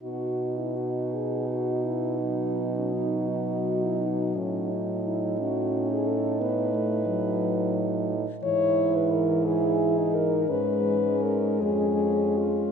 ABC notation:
X:1
M:12/8
L:1/16
Q:3/8=57
K:B
V:1 name="French horn"
F3 E F2 G2 F2 E2 D3 C D2 F3 E D2 | C2 D2 E2 F3 G =A2 B8- B2 z2 | c3 B A2 G4 A2 B4 A2 G4 ^E2 |]
V:2 name="French horn"
D24 | D24 | E6 E3 D3 C6 C6 |]
V:3 name="French horn" clef=bass
z12 F,12- | F,6 C6 B,2 =A,2 F,6 z2 | E,12 G,12 |]
V:4 name="French horn" clef=bass
B,,24 | =A,,24 | G,,12 G,,6 ^E,,6 |]